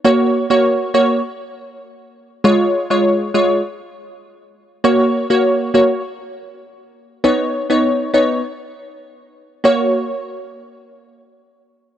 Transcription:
\new Staff \with { instrumentName = "Synth stab" } { \time 4/4 \key fis \major \tempo 4 = 100 <ais fis' cis''>8. <ais fis' cis''>8. <ais fis' cis''>8 r2 | <gis eis' cis''>8. <gis eis' cis''>8. <gis eis' cis''>8 r2 | <ais fis' cis''>8. <ais fis' cis''>8. <ais fis' cis''>8 r2 | <b dis' cis''>8. <b dis' cis''>8. <b dis' cis''>8 r2 |
<ais fis' cis''>1 | }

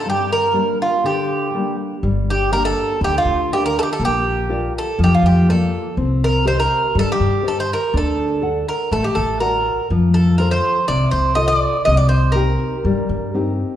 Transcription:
<<
  \new Staff \with { instrumentName = "Bouzouki" } { \time 4/4 \key g \minor \tempo 4 = 122 g'8 bes'4 f'8 g'4. r8 | r8 g'8 bes'16 a'8. g'16 f'8. g'16 bes'16 a'32 g'32 a'16 | g'4. a'8 g'16 f'16 g'8 a'4 | r8 bes'8 c''16 bes'8. a'16 g'8. a'16 c''16 bes'8 |
a'4. bes'8 a'16 g'16 a'8 bes'4 | r8 a'8 bes'16 c''8. d''8 c''8 ees''16 d''8. | ees''16 d''16 c''8 bes'2~ bes'8 r8 | }
  \new Staff \with { instrumentName = "Nylon-string guitar" } { \time 4/4 \key g \minor g,4 <g bes d'>4 d4 <g bes d'>4 | g4 <bes d' g'>4 d4 <d' g' bes'>4 | bes4 <f' bes' d''>4 f4 <bes f' d''>4 | c'4 <g' c'' ees''>4 g4 <g' c'' ees''>4 |
d'4 <a' d'' fis''>4 a4 <fis' d'' fis''>4 | f4 <f' a' c''>4 c4 <f' a' c''>4 | c4 <c' ees' g'>4 g4 <c' ees' g'>4 | }
  \new Staff \with { instrumentName = "Upright bass" } { \clef bass \time 4/4 \key g \minor r1 | g,,2 d,8 d,4. | bes,,2 f,8 f,4. | c,2 g,8 g,4. |
d,2 a,,8 a,,4. | f,2 c,8 c,4. | c,2 g,8 g,4. | }
>>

